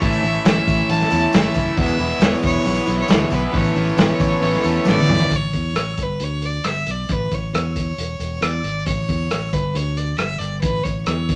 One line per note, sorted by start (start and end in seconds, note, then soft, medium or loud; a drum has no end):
0.00 0.15 A1 loud
0.00 0.23 A2 medium
0.00 0.23 E3 medium
0.00 0.23 A3 medium
0.00 0.22 C#4 medium
0.00 3.51 E4 medium
0.00 0.21 E4 medium
0.00 1.75 C#5 medium
0.00 0.46 E5 loud
0.00 1.75 A5 medium
0.00 kick loud
0.00 open hi-hat medium
0.12 tambourine medium
0.22 0.37 A1 medium
0.22 0.44 A3 soft
0.22 0.45 C#4 soft
0.22 0.45 E4 soft
0.22 open hi-hat medium
0.35 tambourine soft
0.44 0.59 A1 medium
0.44 0.89 A2 medium
0.44 0.89 E3 medium
0.44 0.89 A3 medium
0.44 0.90 C#4 medium
0.44 0.92 E4 medium
0.44 0.91 E5 loud
0.44 snare loud
0.44 open hi-hat medium
0.44 tambourine loud
0.67 0.81 A1 medium
0.67 kick loud
0.67 open hi-hat medium
0.67 tambourine medium
0.89 1.03 A1 medium
0.89 1.12 E3 medium
0.89 1.12 A3 medium
0.89 1.12 C#4 medium
0.89 1.10 E4 medium
0.89 1.36 A5 loud
0.89 open hi-hat medium
0.89 tambourine soft
1.00 snare soft
1.00 tambourine soft
1.10 1.25 E2 medium
1.10 1.33 A3 soft
1.10 1.33 C#4 medium
1.10 1.33 E4 medium
1.10 open hi-hat medium
1.10 tambourine medium
1.33 1.47 A1 loud
1.33 1.56 A2 medium
1.33 1.56 E3 medium
1.33 1.56 A3 medium
1.33 1.55 C#4 medium
1.33 1.54 E4 loud
1.33 1.78 E5 medium
1.33 snare loud
1.33 open hi-hat loud
1.33 tambourine loud
1.54 1.69 F#1 medium
1.54 1.77 A3 soft
1.54 1.77 C#4 soft
1.54 1.77 E4 medium
1.54 kick medium
1.54 open hi-hat medium
1.54 tambourine medium
1.77 1.91 E1 loud
1.77 1.99 E2 medium
1.77 1.99 B2 medium
1.77 1.99 E3 medium
1.77 1.98 G#3 medium
1.77 1.97 B3 medium
1.77 1.97 E4 medium
1.77 5.28 B4 medium
1.77 2.24 E5 loud
1.77 3.53 G#5 medium
1.77 kick loud
1.77 open hi-hat medium
1.88 tambourine medium
1.98 2.12 E1 medium
1.98 2.20 E3 soft
1.98 2.20 G#3 soft
1.98 2.21 B3 soft
1.98 2.21 E4 medium
1.98 open hi-hat medium
2.11 tambourine soft
2.19 2.34 E1 loud
2.19 2.66 E2 medium
2.19 2.66 B2 medium
2.19 2.65 E3 medium
2.19 2.65 G#3 medium
2.19 2.66 B3 medium
2.19 2.66 E4 medium
2.19 2.44 C#5 loud
2.19 snare loud
2.19 open hi-hat medium
2.19 tambourine loud
2.42 2.57 E1 loud
2.42 2.96 C#5 loud
2.42 kick loud
2.42 open hi-hat medium
2.42 tambourine medium
2.64 2.79 B1 medium
2.64 2.88 E3 medium
2.64 2.87 G#3 medium
2.64 2.86 B3 medium
2.64 2.86 E4 medium
2.64 open hi-hat medium
2.64 tambourine soft
2.75 tambourine soft
2.86 3.01 B1 loud
2.86 3.08 E3 medium
2.86 3.07 G#3 soft
2.86 3.08 B3 medium
2.86 3.08 E4 medium
2.86 open hi-hat medium
2.86 tambourine medium
3.01 3.36 C#5 loud
3.08 3.23 D2 medium
3.08 3.31 E2 medium
3.08 3.32 B2 medium
3.08 3.31 E3 medium
3.08 3.31 G#3 medium
3.08 3.30 B3 medium
3.08 3.29 E4 medium
3.08 snare loud
3.08 open hi-hat medium
3.08 tambourine loud
3.30 3.45 B1 loud
3.30 3.50 E3 soft
3.30 3.52 G#3 soft
3.30 3.51 B3 medium
3.30 3.52 E4 medium
3.30 kick medium
3.30 open hi-hat medium
3.30 tambourine medium
3.35 3.58 B4 medium
3.51 3.68 A1 loud
3.51 3.75 A2 medium
3.51 5.29 C#3 medium
3.51 3.75 E3 medium
3.51 3.77 A3 loud
3.51 3.75 B3 medium
3.51 3.74 C#4 medium
3.51 3.74 E4 medium
3.51 5.29 A5 medium
3.51 kick loud
3.51 open hi-hat medium
3.51 tambourine soft
3.57 4.88 C#5 medium
3.64 tambourine medium
3.75 3.90 A1 medium
3.75 3.99 A3 medium
3.75 3.96 B3 soft
3.75 3.95 C#4 soft
3.75 3.96 E4 medium
3.75 open hi-hat medium
3.75 tambourine soft
3.87 tambourine soft
3.96 4.11 A1 medium
3.96 4.41 A2 medium
3.96 4.39 E3 medium
3.96 4.65 A3 loud
3.96 4.39 B3 medium
3.96 4.40 C#4 medium
3.96 4.41 E4 medium
3.96 snare loud
3.96 open hi-hat medium
3.96 tambourine medium
4.09 tambourine soft
4.19 4.34 A1 medium
4.19 4.42 C#5 medium
4.19 kick loud
4.19 open hi-hat medium
4.19 tambourine medium
4.30 tambourine soft
4.40 4.56 A1 medium
4.40 4.63 E3 medium
4.40 4.63 B3 medium
4.40 4.62 C#4 medium
4.40 4.62 E4 medium
4.40 4.64 C#5 medium
4.40 open hi-hat medium
4.40 tambourine soft
4.53 snare soft
4.53 tambourine soft
4.63 4.78 E2 medium
4.63 4.85 A3 medium
4.63 4.84 B3 medium
4.63 4.84 C#4 medium
4.63 4.84 E4 medium
4.63 5.18 A4 medium
4.63 open hi-hat medium
4.63 tambourine medium
4.75 tambourine soft
4.84 5.00 A1 loud
4.84 5.08 A2 loud
4.84 5.08 E3 medium
4.84 5.10 A3 medium
4.84 5.08 B3 medium
4.84 5.08 C#4 loud
4.84 5.06 E4 loud
4.84 snare medium
4.84 tambourine loud
4.90 5.37 D5 loud
4.96 high tom medium
4.96 tambourine soft
5.07 5.22 E2 medium
5.07 5.31 A3 medium
5.07 5.32 B3 soft
5.07 5.31 C#4 medium
5.07 5.30 E4 medium
5.07 mid tom medium
5.18 floor tom medium
5.18 tambourine soft
5.30 5.50 A1 medium
5.30 kick medium
5.30 closed hi-hat medium
5.36 6.04 C#5 loud
5.53 5.73 E2 medium
5.53 kick medium
5.53 closed hi-hat soft
5.74 5.94 A1 medium
5.74 cross-stick loud
5.74 closed hi-hat medium
5.97 6.17 G1 medium
5.97 kick medium
5.97 closed hi-hat medium
6.03 6.25 B4 medium
6.20 6.58 D2 medium
6.20 6.47 C#5 medium
6.20 closed hi-hat medium
6.42 6.68 D5 medium
6.42 closed hi-hat medium
6.64 6.84 G1 medium
6.64 6.92 E5 medium
6.64 cross-stick loud
6.64 closed hi-hat medium
6.86 7.06 B1 medium
6.86 closed hi-hat medium
6.91 7.14 D5 medium
7.09 7.28 A1 medium
7.09 7.36 B4 medium
7.09 kick medium
7.09 closed hi-hat medium
7.31 7.50 A1 medium
7.31 7.54 C#5 medium
7.31 kick medium
7.31 closed hi-hat soft
7.53 7.92 E2 medium
7.53 8.37 C#5 medium
7.53 cross-stick loud
7.53 closed hi-hat medium
7.76 kick medium
7.76 closed hi-hat medium
7.98 8.17 E1 medium
7.98 closed hi-hat medium
8.19 8.39 E1 medium
8.19 closed hi-hat medium
8.37 8.45 C#5 medium
8.41 8.61 E2 medium
8.41 8.86 D5 medium
8.41 cross-stick loud
8.41 closed hi-hat medium
8.64 8.83 G#1 medium
8.64 closed hi-hat soft
8.86 9.06 A1 medium
8.86 9.55 C#5 medium
8.86 kick loud
8.86 closed hi-hat medium
9.09 9.28 E2 medium
9.09 kick medium
9.09 closed hi-hat soft
9.30 9.50 A1 medium
9.30 cross-stick loud
9.30 closed hi-hat medium
9.53 9.72 G1 medium
9.53 9.78 B4 medium
9.53 kick medium
9.53 closed hi-hat medium
9.75 10.13 D2 medium
9.75 9.99 C#5 medium
9.75 closed hi-hat medium
9.97 10.19 D5 medium
9.97 closed hi-hat medium
10.17 10.37 G1 medium
10.17 10.40 E5 medium
10.17 cross-stick loud
10.17 closed hi-hat medium
10.38 10.59 G1 medium
10.38 10.61 D5 medium
10.38 closed hi-hat medium
10.61 10.82 A1 medium
10.61 10.85 B4 medium
10.61 kick loud
10.61 closed hi-hat medium
10.84 11.04 A1 medium
10.84 11.05 C#5 medium
10.84 kick medium
10.84 closed hi-hat medium
11.06 11.36 E2 medium
11.06 11.36 C#5 medium
11.06 cross-stick loud
11.06 closed hi-hat medium
11.29 kick medium
11.29 closed hi-hat medium